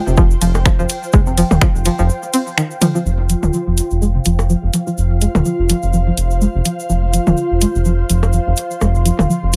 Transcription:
Already playing: ambient pad F4 C5 G5
0.07 analog synth bass F1, synth pluck C3, cabasa
0.17 synth pluck F3, kick, cabasa
0.31 cabasa
0.41 analog synth bass F1, synth pluck F3, closed hi-hat, ride, cabasa
0.55 percussion blips, cabasa
0.66 synth pluck F3, finger snap, kick, cabasa
0.79 analog synth bass F1, synth pluck F3, cabasa
0.89 closed hi-hat, ride, cabasa
1.03 cabasa
1.13 analog synth bass F1, synth pluck G#3, kick, cabasa
1.26 synth pluck C3, cabasa
1.38 synth pluck F3, closed hi-hat, ride, cabasa
1.51 analog synth bass D#1, mid tom, percussion blips, cabasa
1.61 synth pluck F3, finger snap, kick, cabasa
1.75 analog synth bass F1, cabasa
1.85 synth pluck F3, closed hi-hat, ride, cabasa
1.99 analog synth bass F1, synth pluck F3, cabasa
2.09 cabasa
2.23 cabasa
2.33 synth pluck C4, closed hi-hat, ride, cabasa
2.47 cabasa
2.58 synth pluck D#3, finger snap, cabasa
2.71 cabasa
2.81 synth pluck F3, closed hi-hat, mid tom, ride, cabasa
2.95 synth pluck F3, cabasa
3.05 analog synth bass F1, synth pluck F3, ambient pad F4, cabasa
3.26 synth pluck F3, ambient pad F5, closed hi-hat, cabasa
3.43 analog synth bass D#1, mid tom, cabasa
3.53 synth pluck F3, ambient pad C5, cabasa
3.67 analog synth bass F1, synth pluck F3
3.77 closed hi-hat, cabasa
3.91 analog synth bass F1, cabasa
4.01 synth pluck G#3, cabasa
4.15 synth pluck C3
4.25 analog synth bass F1, synth pluck F3, closed hi-hat, cabasa
4.39 percussion blips, cabasa
4.49 synth pluck F3, cabasa
4.63 analog synth bass F1
4.73 synth pluck F3, closed hi-hat, cabasa
4.87 synth pluck F3, cabasa
4.98 analog synth bass F1, cabasa
5.21 synth pluck G#3, closed hi-hat, cabasa
5.35 analog synth bass D#1, synth pluck C3, mid tom, percussion blips, cabasa
5.45 synth pluck F3, cabasa
5.59 analog synth bass F1
5.69 synth pluck F3, closed hi-hat, cabasa
5.83 analog synth bass F1, cabasa
5.93 synth pluck F3, cabasa
6.07 synth pluck F3
6.17 analog synth bass F1, closed hi-hat, cabasa
6.30 cabasa
6.41 synth pluck G#3, cabasa
6.55 analog synth bass F1, synth pluck C3
6.65 synth pluck F3, closed hi-hat, cabasa
6.80 cabasa
6.89 analog synth bass F1, synth pluck F3, cabasa
7.13 synth pluck F3, closed hi-hat, cabasa
7.27 analog synth bass D#1, synth pluck F3, mid tom, cabasa
7.37 cabasa
7.51 analog synth bass F1
7.61 synth pluck G#3, closed hi-hat, cabasa
7.75 analog synth bass F1, synth pluck C3, cabasa
7.85 synth pluck F3, cabasa
8.10 analog synth bass F1, synth pluck F3, closed hi-hat, cabasa
8.23 percussion blips, cabasa
8.33 synth pluck F3, cabasa
8.47 analog synth bass F1, synth pluck F3
8.56 closed hi-hat, cabasa
8.71 cabasa
8.81 analog synth bass F1, synth pluck G#3, percussion blips, cabasa
8.95 synth pluck C3, cabasa
9.05 synth pluck F3, closed hi-hat, cabasa
9.19 analog synth bass D#1, mid tom, percussion blips, cabasa
9.29 synth pluck F3, cabasa
9.43 analog synth bass F1
9.53 cabasa

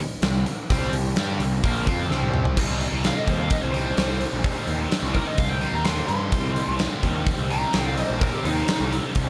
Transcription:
0.01 muted overdriven electric guitar stroke
0.22 picked electric bass C2, overdriven electric guitar C3 G3, snare, open hi-hat
0.46 open hi-hat
0.70 picked electric bass C2, overdriven electric guitar C3 G3 C4, kick, open hi-hat
0.92 picked electric bass C2, overdriven electric guitar C3 G3, open hi-hat
1.16 picked electric bass G2, overdriven electric guitar G3 D4, snare, open hi-hat
1.20 overdriven electric guitar G4
1.40 picked electric bass C2, overdriven electric guitar C3 G3, open hi-hat
1.64 picked electric bass A#1, overdriven electric guitar A#2 F3 A#3, kick, open hi-hat
1.87 picked electric bass F2, overdriven electric guitar F3 C4 F4, kick, open hi-hat
2.10 picked electric bass C2, overdriven electric guitar C3 G3 C4, snare
2.22 high tom
2.34 mid tom
2.45 floor tom
2.57 picked electric bass C2, overdriven electric guitar C3 G3 C4 D#4, kick, crash
2.81 open hi-hat
2.92 picked electric bass C2
3.04 lead electric guitar F5, snare, open hi-hat
3.17 lead electric guitar D#5
3.27 picked electric bass D#2, lead electric guitar C5, kick, open hi-hat
3.39 lead electric guitar F5
3.50 lead electric guitar D#5, kick, open hi-hat
3.61 picked electric bass C2, lead electric guitar C5
3.73 overdriven electric guitar G3 C4 D#4, lead electric guitar C5, open hi-hat
3.77 overdriven electric guitar C3
3.97 picked electric bass C2, overdriven electric guitar C3 G3 C4 D#4, snare, open hi-hat
4.21 open hi-hat
4.33 picked electric bass A#1
4.44 overdriven electric guitar C3 G3 C4 D#4, kick, open hi-hat
4.67 picked electric bass D#2, open hi-hat
4.92 snare, open hi-hat
5.03 picked electric bass C2
5.14 lead electric guitar A#4, kick, open hi-hat
5.26 lead electric guitar D#5
5.38 picked electric bass C2, lead electric guitar F5, kick, open hi-hat
5.49 lead electric guitar G5
5.61 overdriven electric guitar C3 G3 C4 D#4, open hi-hat
5.73 picked electric bass D#2, lead electric guitar A#5
5.84 overdriven electric guitar C3 G3 C4, lead electric guitar C6, snare, open hi-hat
5.89 overdriven electric guitar D#4
6.07 picked electric bass G2, lead electric guitar C6, open hi-hat
6.32 picked electric bass C2, overdriven electric guitar C3 G3 C4, kick, open hi-hat
6.36 overdriven electric guitar D#4
6.56 open hi-hat
6.68 picked electric bass C2
6.79 snare, open hi-hat
7.03 picked electric bass D#2, kick, open hi-hat
7.27 kick, open hi-hat
7.38 picked electric bass C2
7.50 overdriven electric guitar C3 G3 C4 D#4, lead electric guitar A#5, open hi-hat
7.73 picked electric bass C2, overdriven electric guitar C3 G3, lead electric guitar G5, snare, open hi-hat
7.78 overdriven electric guitar C4 D#4
7.87 lead electric guitar F5
7.97 lead electric guitar D#5, open hi-hat
8.08 picked electric bass A#1, lead electric guitar C5
8.19 overdriven electric guitar C3, lead electric guitar A#4, kick, open hi-hat
8.23 overdriven electric guitar G3 C4 D#4
8.34 lead electric guitar G4
8.44 picked electric bass D#2, lead electric guitar D#4, open hi-hat
8.68 snare, open hi-hat
8.80 picked electric bass C2
8.93 open hi-hat
9.15 picked electric bass C2, kick, open hi-hat

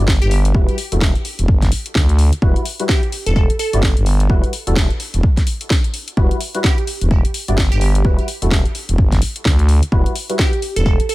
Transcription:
0.00 fm bass G1, synth stab G3 E4 F#4 D5
0.08 kick, snare
0.22 fm bass G1, synth pluck G4, closed hi-hat
0.31 synth pluck G4, open hi-hat
0.45 closed hi-hat
0.54 fm bass E1, synth stab G3 E4 F#4 B4, kick
0.69 closed hi-hat
0.78 open hi-hat
0.92 fm bass E1, synth stab G3 E4 F#4 A4, closed hi-hat
1.01 kick, snare
1.15 closed hi-hat
1.25 open hi-hat
1.39 fm bass E1, closed hi-hat
1.48 fm bass G1, kick
1.62 kick, snare, closed hi-hat
1.72 open hi-hat
1.86 closed hi-hat
1.95 fm bass D2, kick, snare
2.09 closed hi-hat
2.19 open hi-hat
2.33 closed hi-hat
2.42 fm bass E1, synth stab G3 E4 F#4 B4, kick
2.56 closed hi-hat
2.65 open hi-hat
2.80 synth stab G3 E4 F#4 B4, closed hi-hat
2.89 synth pluck G4, kick, snare
3.03 closed hi-hat
3.12 open hi-hat
3.26 fm bass E1, synth pluck A4, closed hi-hat
3.36 synth pluck A4, kick
3.50 closed hi-hat
3.59 synth pluck A4, open hi-hat
3.73 fm bass G1, synth stab G3 E4 F#4 D5, closed hi-hat
3.83 kick, snare
3.97 fm bass G1, closed hi-hat
4.06 open hi-hat
4.20 closed hi-hat
4.30 fm bass E1, synth stab G3 E4 F#4 B4, kick
4.44 closed hi-hat
4.53 open hi-hat
4.67 fm bass E1, synth stab G3 E4 F#4 A4, closed hi-hat
4.76 kick, snare
4.90 closed hi-hat
5.00 open hi-hat
5.14 fm bass E1, closed hi-hat
5.23 kick
5.37 kick, snare, closed hi-hat
5.47 open hi-hat
5.61 closed hi-hat
5.70 kick, snare
5.84 closed hi-hat
5.94 open hi-hat
6.08 closed hi-hat
6.17 fm bass E1, synth stab G3 E4 F#4 B4, kick
6.31 closed hi-hat
6.41 open hi-hat
6.55 synth stab G3 E4 F#4 B4, closed hi-hat
6.64 synth pluck G4, kick, snare
6.78 closed hi-hat
6.87 open hi-hat
7.01 fm bass E1, closed hi-hat
7.11 kick
7.25 closed hi-hat
7.34 open hi-hat
7.48 fm bass G1, synth stab G3 E4 F#4 D5, closed hi-hat
7.58 kick, snare
7.72 fm bass G1, synth pluck G4, closed hi-hat
7.81 synth pluck G4, open hi-hat
7.95 closed hi-hat
8.05 fm bass E1, synth stab G3 E4 F#4 B4, kick
8.19 closed hi-hat
8.28 open hi-hat
8.42 fm bass E1, synth stab G3 E4 F#4 A4, closed hi-hat
8.51 kick, snare
8.65 closed hi-hat
8.75 open hi-hat
8.89 fm bass E1, closed hi-hat
8.98 fm bass G1, kick
9.12 kick, snare, closed hi-hat
9.22 open hi-hat
9.36 closed hi-hat
9.45 fm bass D2, kick, snare
9.59 closed hi-hat
9.69 open hi-hat
9.83 closed hi-hat
9.92 fm bass E1, synth stab G3 E4 F#4 B4, kick
10.06 closed hi-hat
10.15 open hi-hat
10.30 synth stab G3 E4 F#4 B4, closed hi-hat
10.39 synth pluck G4, kick, snare
10.53 closed hi-hat
10.62 open hi-hat
10.76 fm bass E1, synth pluck A4, closed hi-hat
10.86 synth pluck A4, kick
11.00 closed hi-hat
11.09 synth pluck A4, open hi-hat

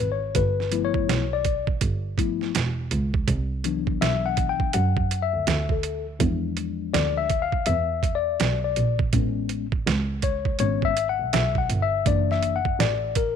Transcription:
0.00 double bass G#1
0.12 tine electric piano C#5
0.35 double bass G1, tine electric piano B4, kick, closed hi-hat
0.60 snare
0.71 tine electric piano F3 A3 B3 E4, closed hi-hat
0.85 tine electric piano C#5
0.94 kick
1.09 double bass B1, snare, closed hi-hat
1.33 tine electric piano D5
1.45 kick, closed hi-hat
1.67 kick
1.81 double bass G1, kick, closed hi-hat
2.18 tine electric piano F3 A3 B3 E4, kick, closed hi-hat
2.41 snare
2.55 double bass E1, snare, closed hi-hat
2.91 double bass C#2, closed hi-hat
3.14 kick
3.28 double bass C2, kick, closed hi-hat
3.64 tine electric piano E3 F#3 B3 D4, closed hi-hat
3.87 kick
4.01 double bass B1, tine electric piano E5, snare, closed hi-hat
4.26 tine electric piano F#5
4.37 kick, closed hi-hat
4.49 tine electric piano G5
4.60 kick
4.73 double bass F#2, tine electric piano F#5, closed hi-hat
4.97 kick
5.11 closed hi-hat
5.23 tine electric piano E5
5.34 double bass D2
5.47 double bass D2, snare, closed hi-hat
5.69 tine electric piano A4, kick
5.83 closed hi-hat
6.19 double bass E2, tine electric piano F3 G#3 D4, kick, closed hi-hat
6.57 closed hi-hat
6.94 double bass D2, tine electric piano D5, snare, closed hi-hat
7.18 tine electric piano E5
7.30 kick, closed hi-hat
7.42 tine electric piano F5
7.52 kick
7.66 double bass E2, tine electric piano E5, closed hi-hat
8.03 kick, closed hi-hat
8.15 tine electric piano D5
8.40 double bass B1, snare, closed hi-hat
8.64 tine electric piano D5
8.76 double bass A#1, closed hi-hat
8.99 kick
9.13 double bass A1, tine electric piano G#3 B3 C#4, kick, closed hi-hat
9.49 closed hi-hat
9.72 kick
9.87 double bass C#2, snare, closed hi-hat
10.22 tine electric piano C#5, kick, closed hi-hat
10.45 kick
10.59 double bass G#1, tine electric piano G#3 B3 C#4 C#5, closed hi-hat
10.82 tine electric piano E5, kick
10.97 closed hi-hat
11.09 tine electric piano F#5
11.19 double bass B1
11.33 double bass B1, tine electric piano E5, snare, closed hi-hat
11.55 tine electric piano F#5, kick
11.70 double bass G1, closed hi-hat
11.82 tine electric piano E5
12.06 double bass F#1, tine electric piano E3 A#3 D4 D5, kick, closed hi-hat
12.31 tine electric piano E5, snare
12.43 closed hi-hat
12.56 tine electric piano F#5
12.65 kick
12.79 double bass A1, tine electric piano D5, snare, closed hi-hat
13.15 tine electric piano A#4, kick, closed hi-hat

